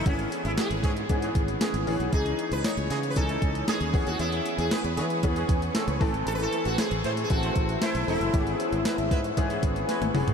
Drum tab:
HH |xxxxxxxxxxxxxxox|xxxxxxxxxxxxxxox|xxxxxxxxxxxxxxox|xxxxxxxxxxxxxxox|
TB |----x-------x---|----x-------x---|----x-------x---|----x-------x---|
SD |----o-------o---|----o-------o---|----o-------o---|----o-------o---|
T1 |----------------|----------------|----------------|----------------|
T2 |----------------|----------------|----------------|----------------|
FT |----------------|----------------|----------------|----------------|
BD |o-----o-o-o-----|o-------o-o---o-|--------o-o---o-|--------o-o-----|

HH |xxxxxxxxxxxxxxox|
TB |----x-----------|
SD |----o-------o---|
T1 |-------------o--|
T2 |--------------o-|
FT |---------------o|
BD |o-----o-o-o-----|